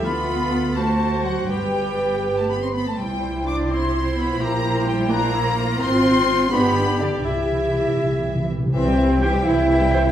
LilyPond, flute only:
\new Staff \with { instrumentName = "Flute" } { \time 6/8 \key c \major \tempo 4. = 83 b''4. a''4 fis''8 | g''4.~ g''16 a''16 b''16 c'''16 b''16 a''16 | g''4 d'''8 c'''4 b''8 | bes''4 g''8 bes''4 r8 |
c'''4. b''4 d''8 | e''2~ e''8 r8 | c''4 g''8 e''4. | }